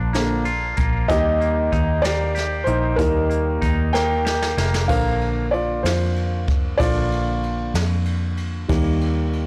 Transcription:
Already playing: fingered electric bass A#1, clean electric guitar F3 A#3 D4 F4, grand piano D5 A#5
0.13 grand piano D3 F3 A#3, clean electric guitar A#3, snare, closed hi-hat
0.45 clean electric guitar F4, closed hi-hat
0.77 fingered electric bass A#1, clean electric guitar A#3, kick, closed hi-hat
1.08 fingered electric bass D#2, clean electric guitar D#3, grand piano D#3 G3 A#3 G4 D#5, kick, closed hi-hat
1.41 clean electric guitar A#3, closed hi-hat
1.72 fingered electric bass D#2, clean electric guitar D#4, kick, closed hi-hat
2.02 clean electric guitar A#3, grand piano G4 D5, snare, closed hi-hat
2.35 clean electric guitar G4, snare, closed hi-hat
2.64 fingered electric bass A#1, clean electric guitar A#3, grand piano D#4 C5, closed hi-hat
2.96 fingered electric bass D#2, grand piano D#3 G3 A#3 D#4 A#4, clean electric guitar D#3, kick, closed hi-hat
3.30 clean electric guitar A#3, closed hi-hat
3.62 fingered electric bass D#2, clean electric guitar D#4, kick, closed hi-hat
3.93 clean electric guitar A#3, grand piano A#4 G5, snare
4.25 clean electric guitar G4, snare
4.42 snare
4.57 fingered electric bass F1, clean electric guitar A#3, snare
4.74 snare
4.88 fingered electric bass A#1, grand piano D3 F3 A#3 A#4 F5, kick, crash
5.21 ride
5.51 grand piano F4 D5, ride
5.83 fingered electric bass F2, grand piano F4 C5, snare, ride
6.16 ride
6.47 kick, ride
6.78 fingered electric bass A#1, grand piano D3 F3 A#3 F4 D5, kick, ride
7.12 ride
7.43 ride
7.74 fingered electric bass F2, snare, ride
8.05 ride
8.37 ride
8.68 fingered electric bass D#2, grand piano D#3 G3 A#3, kick, ride
9.01 ride
9.33 ride

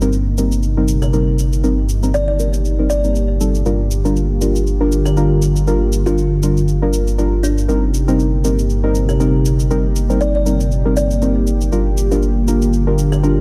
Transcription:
Already playing: detuned saw bass G1, analog synth pad C3 A#3 D#4 G4
0.01 synth stab G3 C4 D#4 A#4, shaker
0.13 shaker
0.38 synth stab G3 C4 D#4 A#4, shaker
0.52 shaker
0.63 shaker
0.77 synth stab G3 C4 D#4 A#4
0.88 shaker
1.02 kalimba A#4, shaker
1.13 synth stab G3 C4 D#4 A#4, shaker
1.39 shaker
1.53 shaker
1.64 synth stab G3 C4 D#4 A#4, shaker
1.89 shaker
2.03 synth stab G3 C4 D#4 A#4, shaker
2.14 kalimba D5, shaker
2.28 kalimba D5
2.39 synth stab G3 C4 D#4 A#4, shaker
2.53 shaker
2.65 shaker
2.79 synth stab G3 C4 D#4 A#4
2.90 kalimba D5, shaker
3.04 synth stab G3 C4 D#4 A#4, shaker
3.15 shaker
3.40 synth stab G3 C4 D#4 A4, shaker
3.55 shaker
3.66 detuned saw bass G1, analog synth pad D3 F4, synth stab G3 D4 F4 A#4, shaker
3.91 shaker
4.05 synth stab G3 D4 F4 A#4, shaker
4.16 shaker
4.41 synth stab G3 D4 F4 A#4, shaker
4.56 shaker
4.67 shaker
4.80 synth stab G3 D4 F4 A#4
4.92 shaker
5.05 kalimba A#4, shaker
5.17 synth stab G3 D4 F4 A#4, shaker
5.42 shaker
5.56 shaker
5.67 synth stab G3 D4 F4 A#4, shaker
5.93 shaker
6.06 synth stab G3 D4 F4 A#4, kalimba F4, shaker
6.18 shaker
6.43 synth stab G3 D4 F4 A#4, shaker
6.57 shaker
6.68 shaker
6.82 synth stab G3 D4 F4 A#4
6.93 shaker
7.07 shaker
7.18 synth stab G3 D4 F4 A#4, shaker
7.43 kalimba D4, shaker
7.58 shaker
7.68 detuned saw bass G1, analog synth pad C3 A#3 D#4 G4, synth stab G3 C4 D#4 A#4, shaker
7.94 shaker
8.08 synth stab G3 C4 D#4 A#4, shaker
8.19 shaker
8.44 synth stab G3 C4 D#4 A#4, shaker
8.59 shaker
8.70 shaker
8.83 synth stab G3 C4 D#4 A#4
8.95 shaker
9.09 kalimba A#4, shaker
9.20 synth stab G3 C4 D#4 A#4, shaker
9.45 shaker
9.60 shaker
9.70 synth stab G3 C4 D#4 A#4, shaker
9.96 shaker
10.10 synth stab G3 C4 D#4 A#4, shaker
10.21 kalimba D5, shaker
10.35 kalimba D5
10.46 synth stab G3 C4 D#4 A#4, shaker
10.60 shaker
10.71 shaker
10.85 synth stab G3 C4 D#4 A#4
10.97 kalimba D5, shaker
11.11 shaker
11.22 synth stab G3 C4 D#4 A#4, shaker
11.47 shaker
11.61 shaker
11.72 detuned saw bass G1, analog synth pad D3 F4, synth stab G3 D4 F4 A#4, shaker
11.97 shaker
12.11 synth stab G3 D4 F4 A#4, shaker
12.23 shaker
12.48 synth stab G3 D4 F4 A#4, shaker
12.62 shaker
12.73 shaker
12.87 synth stab G3 D4 F4 A#4
12.98 shaker
13.12 kalimba A#4, shaker
13.23 synth stab G3 D4 F4 A#4, shaker

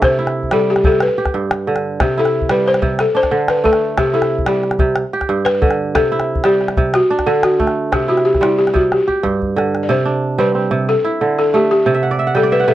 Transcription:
Already playing: kora A3 D4
0.02 kora C3, balafon C5, calabash thump, calabash click
0.19 kora E4
0.27 calabash click
0.43 calabash thump
0.51 kora G3, balafon A4, calabash click
0.60 calabash click
0.70 balafon G4
0.76 calabash click
0.84 kora C3, balafon A4, calabash thump
0.92 calabash click
1.00 balafon B4, calabash click
1.08 calabash click
1.18 kora G4
1.26 calabash thump, calabash click
1.34 kora G2, calabash click
1.51 calabash click
1.67 kora D3
1.76 calabash click
2.00 kora C3, balafon G4, calabash thump, calabash click
2.17 kora E4, balafon A4
2.25 calabash click
2.41 calabash thump
2.49 kora G3, balafon B4, calabash click
2.66 balafon C5, calabash click
2.74 calabash click
2.82 kora C3, calabash thump
2.99 balafon A4, calabash click
3.15 kora D4, balafon C5
3.23 calabash thump, calabash click
3.31 kora D3, calabash click
3.48 balafon B4, calabash click
3.57 calabash click
3.64 kora A3, balafon A4, calabash thump
3.73 calabash click
3.97 kora C3, balafon G4, calabash thump, calabash click
4.14 kora E4, balafon A4
4.22 calabash click
4.39 calabash thump
4.47 kora G3, balafon G4, calabash click
4.64 calabash click
4.71 calabash click
4.79 kora C3, calabash thump
4.96 calabash click
5.13 kora G4
5.21 calabash thump, calabash click
5.29 kora G2, calabash click
5.45 balafon B4, calabash click
5.55 calabash click
5.62 kora D3, calabash thump
5.71 calabash click
5.95 kora C3, balafon A4, calabash thump, calabash click
6.12 kora E4
6.20 calabash click
6.35 calabash thump
6.44 kora G3, balafon G4, calabash click
6.61 calabash click
6.68 calabash click
6.77 kora C3, calabash thump
6.94 balafon F#4, calabash click
7.10 kora D4
7.19 calabash thump, calabash click
7.26 kora D3, balafon A4, calabash click
7.43 balafon F#4, calabash click
7.52 calabash click
7.60 kora A3, calabash thump
7.67 calabash click
7.92 kora C3, balafon G4, calabash thump, calabash click
8.08 kora E4, balafon F#4
8.17 calabash click
8.25 balafon G4
8.34 calabash thump, calabash click
8.41 kora G3, balafon E4, calabash click
8.58 balafon G4, calabash click
8.67 calabash click
8.74 kora C3, balafon F#4, calabash thump
8.92 balafon G4, calabash click
9.07 kora G4, calabash thump
9.23 kora G2, calabash thump
9.42 calabash thump
9.56 kora D3, calabash click
9.75 calabash click
9.83 balafon D5
9.89 kora C3, balafon C5
10.05 kora D4
10.38 kora G3 C4, balafon B4
10.55 kora C4
10.71 kora C3
10.89 balafon A4
11.04 kora E4
11.21 kora D3
11.39 balafon A4
11.54 kora A3, balafon G4
11.71 balafon G4
11.86 kora C3
11.94 kora E5
12.03 kora F#5
12.11 kora D5
12.19 kora E5
12.27 kora F#5
12.35 kora G3 G5, balafon A4
12.43 kora D5
12.52 balafon B4, kora E5
12.60 balafon B4, kora F#5
12.68 kora C3 E5, balafon A4

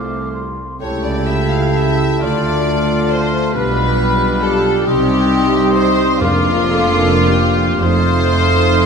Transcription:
Already playing: cello section C2, double bass section C2, bassoon A3, french horn section A3 F4, clarinet F4, violin section C5, oboe F5, flute D6
0.33 flute C6
0.81 double bass section C#2, cello section C#3, bassoon A3, french horn section A3 G4, clarinet E4, viola section E4, violin section C#5, oboe G5, flute A5
1.05 violin section D5
1.28 violin section E5
1.50 violin section F5
1.74 violin section E5
2.21 double bass section D2, cello section D3, french horn section A3 F4, viola section F4, clarinet F4, violin section D5, oboe F5
3.11 violin section C5
3.54 double bass section B1, cello section B2, bassoon G3, french horn section G3 F4, clarinet D4, viola section G4, violin section B4, flute B5
4.42 violin section A4
4.85 double bass section C2, cello section C3, french horn section G3 D#4, clarinet C4, violin section G4, oboe D#5, flute C6
5.74 violin section C5
6.19 double bass section F1, cello section F2, timpani F2, bassoon A#3, french horn section A#3 D4, violin section F4, clarinet F4, viola section A#4, oboe F5, flute D6
6.71 viola section A4
7.26 viola section G4
7.79 double bass section F1, cello section F2, french horn section A3 D#4, bassoon A3, viola section F4, violin section C5, flute D#6

